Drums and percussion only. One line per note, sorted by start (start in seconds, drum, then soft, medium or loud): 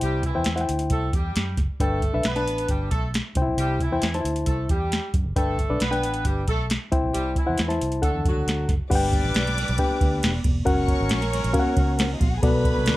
0.01 closed hi-hat medium
0.23 kick medium
0.23 closed hi-hat medium
0.44 snare loud
0.44 closed hi-hat medium
0.58 snare soft
0.58 closed hi-hat soft
0.69 closed hi-hat medium
0.79 closed hi-hat soft
0.90 kick medium
0.90 closed hi-hat medium
1.13 kick medium
1.13 closed hi-hat medium
1.36 snare loud
1.36 closed hi-hat medium
1.57 kick loud
1.57 snare soft
1.57 closed hi-hat medium
1.80 kick loud
1.80 closed hi-hat medium
2.02 kick medium
2.02 closed hi-hat soft
2.23 snare loud
2.23 closed hi-hat medium
2.36 snare soft
2.36 closed hi-hat soft
2.48 closed hi-hat medium
2.58 closed hi-hat soft
2.69 kick medium
2.69 closed hi-hat medium
2.91 kick medium
2.91 closed hi-hat medium
3.14 snare loud
3.14 closed hi-hat medium
3.35 kick medium
3.35 closed hi-hat medium
3.58 closed hi-hat medium
3.80 kick medium
3.80 closed hi-hat soft
4.02 snare loud
4.02 closed hi-hat medium
4.14 snare soft
4.14 closed hi-hat soft
4.25 closed hi-hat medium
4.36 closed hi-hat soft
4.46 kick medium
4.46 closed hi-hat medium
4.69 kick medium
4.69 closed hi-hat medium
4.92 snare loud
4.92 closed hi-hat medium
5.14 kick medium
5.14 closed hi-hat medium
5.36 kick loud
5.36 closed hi-hat medium
5.58 kick medium
5.58 closed hi-hat medium
5.80 snare loud
5.80 closed hi-hat medium
5.93 snare soft
5.93 closed hi-hat soft
6.03 closed hi-hat medium
6.14 closed hi-hat soft
6.25 kick medium
6.25 closed hi-hat medium
6.48 kick medium
6.48 closed hi-hat medium
6.70 snare loud
6.70 closed hi-hat medium
6.92 kick loud
6.92 closed hi-hat medium
7.15 closed hi-hat medium
7.36 kick medium
7.36 closed hi-hat medium
7.58 snare loud
7.58 closed hi-hat medium
7.70 snare soft
7.70 closed hi-hat soft
7.82 closed hi-hat medium
7.92 closed hi-hat soft
8.03 kick medium
8.03 closed hi-hat medium
8.25 kick medium
8.25 closed hi-hat medium
8.48 snare loud
8.48 closed hi-hat medium
8.69 kick loud
8.69 snare soft
8.69 closed hi-hat medium
8.91 kick loud
8.91 crash loud
8.91 ride medium
8.91 muted conga soft
8.91 low conga medium
9.03 high conga medium
9.13 kick medium
9.13 ride soft
9.13 muted conga soft
9.34 snare loud
9.34 ride medium
9.47 snare soft
9.47 ride soft
9.57 ride medium
9.57 low conga medium
9.68 ride soft
9.78 kick medium
9.78 ride medium
9.78 muted conga soft
9.78 high conga medium
10.01 kick loud
10.01 ride medium
10.01 muted conga soft
10.01 high conga medium
10.23 snare loud
10.23 ride medium
10.23 muted conga soft
10.23 high conga medium
10.44 kick loud
10.44 ride medium
10.44 muted conga soft
10.44 high conga medium
10.67 kick loud
10.67 ride medium
10.67 muted conga soft
10.67 low conga medium
10.79 high conga medium
10.88 kick medium
10.88 ride soft
11.09 snare loud
11.09 ride medium
11.22 snare soft
11.22 ride soft
11.33 ride medium
11.33 muted conga soft
11.33 low conga medium
11.44 ride soft
11.54 kick loud
11.54 ride medium
11.54 muted conga soft
11.54 high conga medium
11.77 kick loud
11.77 ride medium
11.77 high conga medium
11.99 snare loud
11.99 ride medium
11.99 high conga medium
12.21 kick loud
12.21 ride medium
12.21 muted conga soft
12.21 high conga medium
12.43 kick loud
12.43 ride medium
12.43 low conga medium
12.54 high conga medium
12.65 kick medium
12.65 ride soft
12.65 muted conga soft
12.86 snare loud
12.86 ride medium